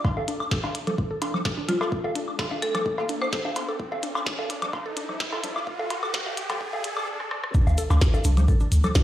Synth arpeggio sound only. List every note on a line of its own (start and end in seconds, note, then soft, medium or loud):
0.17 0.23 A4 medium
0.28 0.35 D4 medium
0.51 0.58 A4 medium
0.64 0.70 D4 medium
0.87 0.93 A4 medium
1.11 1.17 A4 medium
1.22 1.28 D4 medium
1.45 1.52 A4 medium
1.58 1.63 D4 medium
1.81 1.87 A4 medium
2.04 2.10 A4 medium
2.15 2.22 D4 medium
2.39 2.46 A4 medium
2.51 2.57 D4 medium
2.75 2.81 A4 medium
2.98 3.04 A4 medium
3.09 3.16 D4 medium
3.33 3.39 A4 medium
3.45 3.51 D4 medium
3.68 3.74 A4 medium
3.92 3.98 A4 medium
4.03 4.10 D4 medium
4.39 4.45 A4 medium
4.50 4.56 D4 medium
4.86 4.92 A4 medium
4.97 5.03 D4 medium
5.33 5.38 A4 medium
5.44 5.50 D4 medium
5.79 5.85 A4 medium
6.03 6.09 A4 medium
6.26 6.32 A4 medium
6.50 6.56 A4 medium
6.73 6.79 A4 medium
6.97 7.02 A4 medium
7.55 7.61 D4 medium
7.78 7.85 A4 medium
7.90 7.96 D4 medium
8.14 8.20 A4 medium
8.25 8.31 D4 medium
8.48 8.55 A4 medium
8.61 8.67 D4 medium
8.84 8.90 A4 medium
8.95 9.02 D4 medium